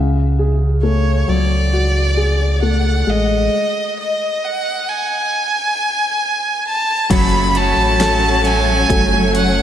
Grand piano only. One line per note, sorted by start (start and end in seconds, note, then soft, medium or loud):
0.00 3.49 C#3 medium
0.39 2.14 G#4 soft
0.83 2.59 A3 soft
1.28 3.03 F#3 soft
1.73 3.48 F#4 soft
2.17 3.48 G#4 soft
2.63 3.50 A3 soft
3.07 3.51 G#3 soft
7.10 9.62 F#3 medium
8.00 8.87 C#4 soft
8.00 8.87 F#4 soft
8.00 8.87 A4 medium
8.89 9.62 C#4 soft
8.89 9.62 F#4 soft
8.89 9.62 A4 medium